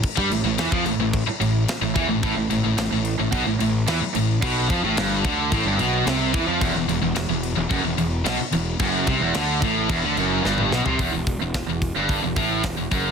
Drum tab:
CC |x-x-x-x-x-x-x-x-|x-x-x-x-x-x-x-x-|x-x-x-x-x-x-x-x-|x-x-x-x-x-x-x-x-|
HH |----------------|----------------|----------------|----------------|
SD |----o-------o---|----o-------o---|----o-------o---|----o-------o---|
T2 |----------------|----------------|----------------|----------------|
FT |----------------|----------------|----------------|----------------|
BD |oo---o--o-----o-|o-------o-------|o-o---o-o-----o-|o-------o-------|

CC |x-x-x-x-x-x-----|----------------|
HH |----------------|o-o-o-o-o-o-o-o-|
SD |----o-------o-o-|----o-------o---|
T2 |-------------o--|----------------|
FT |---------------o|----------------|
BD |o-o---o-o-------|o-o-o-o-o-o-o-o-|